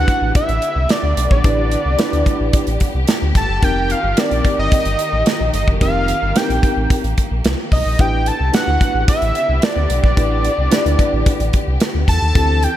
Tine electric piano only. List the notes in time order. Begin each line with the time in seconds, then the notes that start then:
Already playing: D4 E4 G4 B4
1.44 D4 E4 G4 B4
1.99 D4 E4 G4 B4
3.62 C4 D#4 G4 A#4
4.17 C4 D#4 G4 A#4
5.81 C4 D#4 G4 A#4
6.35 C4 D#4 G4 A#4
7.99 D4 E4 G4 B4
8.53 D4 E4 G4 B4
10.17 D4 E4 G4 B4
10.70 D4 E4 G4 B4
12.35 C4 E4 G4 A4